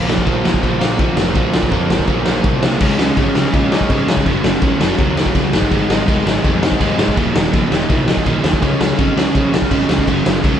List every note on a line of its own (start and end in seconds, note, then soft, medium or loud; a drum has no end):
0.07 0.25 A#1 medium
0.07 0.25 A#2 medium
0.07 0.26 F3 medium
0.07 0.27 A#3 medium
0.07 snare loud
0.18 kick medium
0.26 0.43 A#1 medium
0.26 0.44 A#2 medium
0.26 0.45 F3 medium
0.26 0.45 A#3 loud
0.26 kick medium
0.26 ride medium
0.44 0.61 A#1 medium
0.44 0.61 A#2 medium
0.44 0.62 F3 loud
0.44 0.62 A#3 loud
0.44 snare loud
0.54 kick medium
0.62 0.79 A#1 loud
0.62 0.79 A#2 medium
0.62 0.80 F3 medium
0.62 0.80 A#3 medium
0.62 kick medium
0.62 ride medium
0.80 0.97 A#1 loud
0.80 0.97 A#2 medium
0.80 0.99 F3 medium
0.80 0.99 A#3 loud
0.80 snare loud
0.98 1.15 A#1 loud
0.98 1.15 A#2 medium
0.98 1.18 F3 medium
0.98 1.17 A#3 loud
0.98 kick loud
0.98 ride medium
1.17 1.34 F1 medium
1.17 1.34 A#2 medium
1.17 1.35 F3 loud
1.17 1.35 A#3 loud
1.17 snare loud
1.35 1.52 A#1 loud
1.35 1.52 A#2 medium
1.35 1.53 F3 loud
1.35 1.54 A#3 loud
1.35 kick loud
1.35 ride medium
1.53 1.70 A#1 medium
1.53 1.70 A#2 medium
1.53 1.71 F3 medium
1.53 1.72 A#3 medium
1.53 snare loud
1.63 kick medium
1.71 1.88 F2 medium
1.71 1.88 A#2 medium
1.71 1.89 F3 medium
1.71 1.89 A#3 loud
1.71 kick medium
1.71 ride medium
1.89 2.06 G#1 medium
1.89 2.07 A#2 medium
1.89 2.07 F3 loud
1.89 2.08 A#3 medium
1.89 snare loud
1.99 kick medium
2.07 2.40 A#1 medium
2.07 2.25 A#2 medium
2.07 2.26 F3 loud
2.07 2.26 A#3 loud
2.07 kick loud
2.07 ride medium
2.26 2.42 A#2 medium
2.26 2.42 F3 loud
2.26 2.43 A#3 loud
2.26 snare loud
2.43 2.76 C2 loud
2.43 2.61 A#2 medium
2.43 2.62 F3 medium
2.43 2.62 A#3 medium
2.43 kick loud
2.43 ride medium
2.62 2.80 A#2 medium
2.62 2.80 F3 loud
2.62 2.80 A#3 medium
2.62 snare loud
2.81 2.92 C#2 loud
2.81 2.98 C#3 loud
2.81 2.98 G#3 medium
2.81 2.99 C#4 loud
2.81 kick loud
2.81 crash loud
2.81 crash medium
2.99 3.10 C#2 loud
2.99 3.16 C#3 medium
2.99 3.17 G#3 medium
2.99 3.18 C#4 medium
2.99 snare loud
3.17 3.28 G#1 loud
3.17 3.35 C#3 medium
3.17 3.35 G#3 medium
3.17 3.36 C#4 medium
3.17 kick loud
3.17 crash medium
3.35 3.46 C#2 medium
3.35 3.53 C#3 medium
3.35 3.53 G#3 loud
3.35 3.54 C#4 loud
3.35 snare loud
3.53 3.76 A#2 medium
3.53 3.71 C#3 medium
3.53 3.72 G#3 loud
3.53 3.72 C#4 loud
3.53 kick loud
3.53 crash medium
3.72 3.90 C#3 medium
3.72 3.90 G#3 loud
3.72 3.91 C#4 loud
3.72 snare loud
3.81 kick medium
3.90 4.01 G#2 loud
3.90 4.07 C#3 medium
3.90 4.08 G#3 medium
3.90 4.08 C#4 loud
3.90 kick loud
3.90 crash medium
4.07 4.19 C#3 loud
4.07 4.25 C#3 medium
4.07 4.25 G#3 loud
4.07 4.26 C#4 loud
4.07 snare loud
4.17 kick medium
4.26 4.37 F#1 loud
4.26 4.43 F#2 medium
4.26 4.43 C#3 loud
4.26 4.44 F#3 loud
4.26 kick loud
4.26 crash medium
4.44 4.55 F#1 loud
4.44 4.61 F#2 medium
4.44 4.62 C#3 medium
4.44 4.62 F#3 medium
4.44 snare loud
4.62 4.73 C#2 medium
4.62 4.79 F#2 medium
4.62 4.80 C#3 loud
4.62 4.80 F#3 loud
4.62 kick loud
4.62 crash medium
4.80 4.92 F#1 medium
4.80 4.98 F#2 loud
4.80 4.99 C#3 medium
4.80 4.99 F#3 loud
4.80 snare loud
4.98 5.21 D#2 medium
4.98 5.16 F#2 loud
4.98 5.17 C#3 medium
4.98 5.17 F#3 loud
4.98 kick loud
4.98 crash medium
5.17 5.33 F#2 medium
5.17 5.34 C#3 medium
5.17 5.35 F#3 medium
5.17 snare loud
5.26 kick medium
5.35 5.55 C#2 medium
5.35 5.52 F#2 medium
5.35 5.52 C#3 loud
5.35 5.52 F#3 loud
5.35 kick loud
5.35 crash medium
5.53 5.65 G#1 loud
5.53 5.69 G#2 loud
5.53 5.70 D#3 loud
5.53 5.71 G#3 loud
5.53 snare loud
5.62 kick medium
5.71 5.83 G#1 loud
5.71 5.88 G#2 medium
5.71 5.89 D#3 loud
5.71 5.89 G#3 loud
5.71 kick loud
5.71 crash medium
5.89 6.01 G#1 loud
5.89 6.06 G#2 medium
5.89 6.07 D#3 loud
5.89 6.07 G#3 loud
5.89 snare loud
6.07 6.19 D#1 loud
6.07 6.25 G#2 medium
6.07 6.25 D#3 loud
6.07 6.26 G#3 medium
6.07 kick loud
6.07 crash medium
6.26 6.37 G#1 medium
6.26 6.43 G#2 medium
6.26 6.44 D#3 loud
6.26 6.44 G#3 medium
6.26 snare loud
6.44 6.67 F2 medium
6.44 6.61 G#2 loud
6.44 6.62 D#3 loud
6.44 6.62 G#3 loud
6.44 kick loud
6.44 crash medium
6.63 6.80 G#2 medium
6.63 6.80 D#3 medium
6.63 6.80 G#3 medium
6.63 snare loud
6.72 kick medium
6.80 6.92 D#2 medium
6.80 6.97 G#2 medium
6.80 6.98 D#3 medium
6.80 6.99 G#3 medium
6.80 kick loud
6.80 crash medium
6.98 7.15 G#2 medium
6.98 7.10 G#2 medium
6.98 7.16 D#3 medium
6.98 7.16 G#3 loud
6.98 snare loud
7.08 kick medium
7.16 7.28 D#1 loud
7.16 7.34 D#2 loud
7.16 7.35 A#2 loud
7.16 7.35 D#3 loud
7.16 kick loud
7.16 crash medium
7.35 7.47 D#1 loud
7.35 7.52 D#2 medium
7.35 7.53 A#2 medium
7.35 7.54 D#3 medium
7.35 snare loud
7.53 7.65 A#1 medium
7.53 7.70 D#2 medium
7.53 7.71 A#2 medium
7.53 7.71 D#3 loud
7.53 kick loud
7.53 crash medium
7.71 7.83 D#1 medium
7.71 7.88 D#2 medium
7.71 7.89 A#2 medium
7.71 7.90 D#3 medium
7.71 snare loud
7.89 8.12 C2 medium
7.89 8.07 D#2 loud
7.89 8.07 A#2 medium
7.89 8.08 D#3 loud
7.89 kick loud
7.89 crash medium
8.08 8.25 D#2 medium
8.08 8.25 A#2 medium
8.08 8.26 D#3 loud
8.08 snare loud
8.17 kick medium
8.26 8.37 A#1 medium
8.26 8.42 D#2 medium
8.26 8.43 A#2 medium
8.26 8.43 D#3 loud
8.26 kick loud
8.26 crash medium
8.43 8.61 D#2 medium
8.43 8.55 D#2 medium
8.43 8.61 A#2 medium
8.43 8.61 D#3 loud
8.43 snare loud
8.53 kick medium
8.61 8.73 C#2 loud
8.61 8.79 C#3 medium
8.61 8.80 G#3 medium
8.61 8.81 C#4 loud
8.61 kick medium
8.61 crash medium
8.80 8.92 C#2 loud
8.80 8.97 C#3 medium
8.80 8.98 G#3 medium
8.80 8.99 C#4 loud
8.80 snare loud
8.98 9.10 G#1 loud
8.98 9.15 C#3 medium
8.98 9.16 G#3 medium
8.98 9.16 C#4 loud
8.98 kick loud
8.98 crash medium
9.16 9.28 C#2 medium
9.16 9.33 C#3 medium
9.16 9.34 G#3 loud
9.16 9.34 C#4 medium
9.16 snare loud
9.34 9.57 A#1 medium
9.34 9.51 C#3 medium
9.34 9.52 G#3 medium
9.34 9.52 C#4 loud
9.34 kick loud
9.34 crash medium
9.52 9.69 C#3 medium
9.52 9.70 G#3 medium
9.52 9.71 C#4 loud
9.52 snare loud
9.62 kick medium
9.70 9.82 G#1 medium
9.70 9.88 C#3 medium
9.70 9.89 G#3 medium
9.70 9.90 C#4 loud
9.70 kick loud
9.70 crash medium
9.89 10.09 C#2 loud
9.89 10.06 C#3 medium
9.89 10.07 G#3 loud
9.89 10.07 C#4 loud
9.89 snare loud
9.98 kick medium
10.07 10.19 F#1 loud
10.07 10.23 F#2 medium
10.07 10.24 C#3 loud
10.07 10.24 F#3 loud
10.07 kick loud
10.07 crash medium
10.24 10.37 F#1 loud
10.24 10.42 F#2 medium
10.24 10.42 C#3 medium
10.24 10.43 F#3 loud
10.24 snare loud
10.43 10.55 C#2 medium
10.43 10.60 F#2 medium
10.43 10.60 C#3 loud
10.43 10.60 F#3 loud
10.43 kick loud
10.43 crash medium